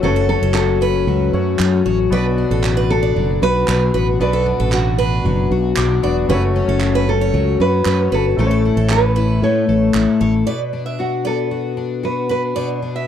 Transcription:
Already playing: F#3 C#4
0.01 F#1 F#2 A3 C#4 F#4 A4 C#5
0.16 A4
0.29 C#4 A4
0.42 F#1 A4
0.54 F#4 A4, clap
0.81 C#4 B4
1.07 C#2 F#3
1.33 F#2 A3 C#4 F#4 C#5
1.59 F#2 C#4, clap
1.86 A1 F#4 C#5
2.10 B1 B2 B3 D4 F#4 B4 D5
2.38 D4
2.51 A1 A4
2.64 F#4, clap
2.77 B4
2.90 D4 A4
3.03 D5
3.16 F#1 F#3
3.42 B1 F#4 B4
3.68 B1 D4 B4, clap
3.94 A1 F#4 B4
4.19 B1 B2 B3 D4 F#4 B4
4.23 D5
4.33 A4
4.46 D4
4.60 A1 A4
4.72 F#4, clap
4.98 D4 B4
5.25 F#1 F#3
5.51 B1 F#4
5.77 B1 D4 D6, clap
6.02 E1 B3 D4 F#4 D5
6.28 F#1 F#2 G3 C#4 F#4 B4
6.32 A3 C#5
6.56 C#4
6.68 F#1 A4
6.80 F#4, clap
6.95 B4
7.08 C#4 A4
7.21 C#5
7.34 C#2 F#3
7.60 F#2 F#4 B4
7.85 F#2 C#4 B4, clap
8.12 G1 F#4 A4 B4
8.37 A1 A2 A3 C#4 E4 A4
8.41 C5
8.47 C#5
8.51 A4
8.65 E4
8.77 A1 A4
8.90 A4 B4, clap
9.16 E4 B4
9.42 A2 A3 C#5
9.69 A1 A4
9.94 A1 E4, clap
10.21 A1 A4 C#5
10.47 B2 D5
10.73 D4
10.86 E5
10.99 F#4
11.25 B3 A4 D5
11.51 F#4
11.77 D4
12.03 F#4 B4
12.29 D4 B4
12.56 B2 D5
12.82 D4
12.96 E5

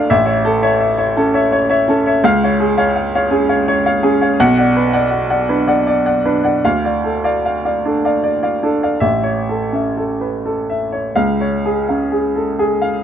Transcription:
Already playing: D4 A4 D5 F5
0.10 A1 E5
0.26 C#5 E5
0.45 A4
0.62 C#5 E5
0.80 E5
0.98 C#5 E5
1.17 C#4 A4
1.34 C#5 E5
1.52 C#5
1.70 C#5 E5
1.88 C#4 A4
2.06 C#5 E5
2.24 C#2 F5
2.44 C#5 F5
2.60 G#4
2.78 C#5 F5
2.96 F5
3.15 C#5 F5
3.31 C#4 G#4
3.49 C#5 F5
3.68 C#5
3.86 C#5 F5
4.03 C#4 G#4
4.21 C#5 F5
4.40 B1 F#5
4.58 D5 F#5
4.76 B4
4.93 D5 F#5
5.11 F#5
5.30 D5 F#5
5.49 D4 B4
5.68 D5 F#5
5.87 D5
6.06 D5 F#5
6.25 D4 B4
6.44 D5 F#5
6.65 D2 F5
6.84 D5 F5
7.04 A4
7.24 D5 F5
7.46 F5
7.65 D5 F5
7.85 D4 A4
8.05 D5 F5
8.24 D5
8.43 D5 F5
8.63 D4 A4
8.83 D5 F5
9.00 A1 E5
9.23 C#5
9.49 A4
9.73 C#4 E5
9.97 A4
10.21 B4
10.46 A4
10.70 E5
10.92 C#5
11.16 C#2 F5
11.41 C#5
11.65 G#4
11.89 C#4 F5
12.12 G#4
12.36 A4
12.59 G#4
12.82 F5

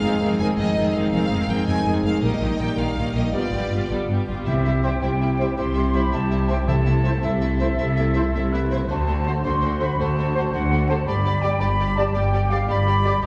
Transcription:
Already playing: G#3 F5
0.02 F1 F2 D#3 C4 D#4 G#4
0.22 F1 F2 D#3 C4 D#4 G#4
0.39 F1 F2 D#3 C4 D#4 G#4 G#5
0.57 F1 F2 D#3 C4 D#4 G#4 D#5
0.77 F1 F2 D#3 C4 D#4 G#4
0.94 F1 F2 D#3 C4 D#4 G#4 F5
1.12 F1 F2 D#3 C4 D#4 G#4 F5
1.30 F1 F2 D#3 C4 D#4 G#4
1.48 F1 F2 D#3 C4 D#4 G#4 G5
1.67 F1 F2 D#3 C4 D#4 G#4 G#5
1.85 F1 F2 D#3 C4 D#4 G#4
2.03 F1 F2 D#3 C4 D#4 G#4 F5
2.21 A#1 A#2 D#3 G3 A#3 D#4 G4 D#5
2.41 A#1 A#2 D#3 A#3 D#4 G4
2.59 A#1 A#2 D#3 A#3 D#4 G4 G5
2.76 A#1 A#2 D#3 A#3 D#4 G4 F5
2.96 A#1 A#2 D#3 A#3
3.00 D#4 G4
3.14 A#1 A#2 D#3 A#3 D#4 G4 D#5
3.33 G1 G2 G3 B3 F4 G4 D5
3.52 G1 G2 G3 B3 F4 G4
3.71 G1 G2 G3 B3 F4 G4
3.90 G1 G2 G3 B3 A4
4.09 G1 G2 G3 B3 G4
4.27 G1 G2 G3 B3 F4
4.44 C2 C3 E4 G4 E5
4.49 G3
4.65 G3 E4 E5
4.83 G3 E4 C5 E5 G5
5.00 C2 C3 G3 E4 G4 E5 G5
5.22 G3 E4 E5
5.38 G3 E4 C5 E5
5.57 C2 C3 G3 E4 G4 E5 C6
5.74 G3 E4 E5
5.94 G3 E4 C5 E5 B5
6.12 C2 C3 G3 E4 E5 A5
6.31 G3 E4 E5
6.49 G3 E4 C5 E5 G5
6.66 C2 C3 A3 E4 A4 E5 A5
6.85 A3 E4 E5
7.05 A3 E4 C5 E5
7.22 C2 C3 A3 E4 A4 E5
7.41 A3 E4 E5
7.60 A3 E4 C5 E5
7.79 C2 C3 A3 E4 E5
7.97 A3 E4 E5
8.15 A3 E4 C5 E5
8.34 C2 C3 A3 E4 E5
8.52 A3 E4 B4 E5
8.71 A3 E4 C5 E5
8.89 D2 D3 A3 F#4 C5 A5
9.08 A3 F#4 C5
9.24 A3 F#4 C5
9.44 D2 D3 A3 F#4 C5 C6
9.62 A3 F#4 C5
9.79 A3 F#4 C5 B5
9.98 D2 D3 A3 F#4 C5 A5
10.17 A3 F#4 C5
10.35 A3 F#4 C5
10.52 D2 D3 A3 F#4 C5 F#5
10.70 A3 F#4 C5
10.88 A3 F#4 C5 A5
11.06 G1 G2 G3 G4 D5 B5
11.25 G3 G4 D5
11.41 G3 G4 D5 G5
11.60 G1 G2 G3 G4 D5 B5
11.80 G3 G4 D5
11.97 G3 G4 D5 A5
12.13 G1 G2 G3 G4 D5 G5
12.33 G3 G4 D5
12.50 G3 G4 D5 F5
12.68 G1 G2 G3 G4 D5 B5
12.86 G3 G4 D5
13.04 G3 G4 D5
13.21 D#2 G3 G4 D#5

